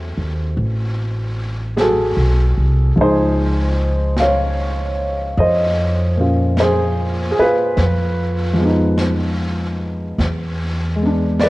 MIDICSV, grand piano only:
0, 0, Header, 1, 2, 480
1, 0, Start_track
1, 0, Tempo, 1200000
1, 1190, Time_signature, 4, 2, 24, 8
1, 4596, End_track
2, 0, Start_track
2, 0, Title_t, "Grand piano"
2, 0, Program_c, 0, 0
2, 0, Control_c, 0, 64, 127
2, 0, Note_on_c, 0, 54, 42
2, 0, Note_on_c, 0, 57, 40
2, 0, Note_on_c, 0, 60, 40
2, 0, Note_on_c, 0, 64, 44
2, 0, Note_on_c, 0, 69, 50
2, 0, Note_on_c, 0, 72, 69
2, 689, Note_off_c, 0, 69, 0
2, 706, Note_on_c, 0, 68, 54
2, 718, Note_off_c, 0, 68, 0
2, 721, Note_on_c, 0, 69, 66
2, 725, Note_on_c, 0, 66, 54
2, 747, Note_off_c, 0, 72, 0
2, 1179, Note_off_c, 0, 69, 0
2, 1181, Note_off_c, 0, 66, 0
2, 1184, Note_on_c, 0, 53, 44
2, 1187, Note_off_c, 0, 54, 0
2, 1189, Note_on_c, 0, 56, 40
2, 1190, Note_off_c, 0, 57, 0
2, 1194, Note_off_c, 0, 60, 0
2, 1194, Control_c, 0, 64, 0
2, 1198, Note_off_c, 0, 64, 0
2, 1205, Note_on_c, 0, 63, 53
2, 1205, Note_on_c, 0, 72, 74
2, 1206, Note_on_c, 0, 68, 59
2, 1259, Control_c, 0, 64, 127
2, 1661, Note_off_c, 0, 68, 0
2, 1661, Note_off_c, 0, 72, 0
2, 1679, Note_on_c, 0, 77, 68
2, 1687, Note_on_c, 0, 73, 60
2, 2142, Note_off_c, 0, 73, 0
2, 2155, Note_on_c, 0, 75, 64
2, 2161, Note_on_c, 0, 72, 58
2, 2169, Note_off_c, 0, 77, 0
2, 2469, Note_on_c, 0, 46, 39
2, 2477, Note_on_c, 0, 61, 31
2, 2482, Note_on_c, 0, 65, 42
2, 2620, Note_off_c, 0, 72, 0
2, 2640, Note_on_c, 0, 72, 66
2, 2646, Note_on_c, 0, 68, 62
2, 2647, Note_off_c, 0, 75, 0
2, 2908, Note_off_c, 0, 68, 0
2, 2926, Note_on_c, 0, 68, 59
2, 2930, Note_off_c, 0, 72, 0
2, 2957, Note_on_c, 0, 71, 75
2, 2958, Note_off_c, 0, 65, 0
2, 2959, Note_off_c, 0, 68, 0
2, 2964, Note_on_c, 0, 65, 56
2, 3108, Note_off_c, 0, 53, 0
2, 3109, Note_off_c, 0, 46, 0
2, 3111, Note_off_c, 0, 56, 0
2, 3113, Note_off_c, 0, 61, 0
2, 3116, Control_c, 0, 64, 0
2, 3119, Note_off_c, 0, 63, 0
2, 3179, Control_c, 0, 64, 127
2, 3413, Note_on_c, 0, 53, 44
2, 3428, Note_on_c, 0, 56, 44
2, 3444, Note_on_c, 0, 59, 39
2, 3459, Note_on_c, 0, 63, 45
2, 4063, Note_off_c, 0, 53, 0
2, 4063, Note_off_c, 0, 65, 0
2, 4071, Note_off_c, 0, 56, 0
2, 4079, Note_off_c, 0, 59, 0
2, 4080, Control_c, 0, 64, 0
2, 4086, Note_off_c, 0, 63, 0
2, 4159, Control_c, 0, 64, 127
2, 4382, Note_on_c, 0, 56, 39
2, 4409, Note_on_c, 0, 59, 38
2, 4423, Note_on_c, 0, 62, 43
2, 4563, Note_on_c, 0, 74, 78
2, 4568, Note_off_c, 0, 71, 0
2, 4574, Note_on_c, 0, 71, 58
2, 4596, Note_off_c, 0, 56, 0
2, 4596, Note_off_c, 0, 59, 0
2, 4596, Note_off_c, 0, 62, 0
2, 4596, Note_off_c, 0, 71, 0
2, 4596, Note_off_c, 0, 74, 0
2, 4596, End_track
0, 0, End_of_file